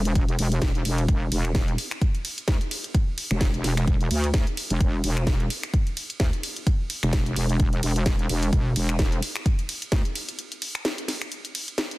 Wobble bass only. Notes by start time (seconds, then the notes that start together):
Already playing: E1
0.39 E1
0.85 E1
1.09 E1
1.32 E1
2.48 D2
3.31 E1
3.64 E1
4.11 D2
4.70 E1
4.81 E1
5.04 E1
6.20 D2
7.03 E1
7.36 E1
7.83 E1
8.30 E1
8.53 E1
8.76 E1
9.92 D2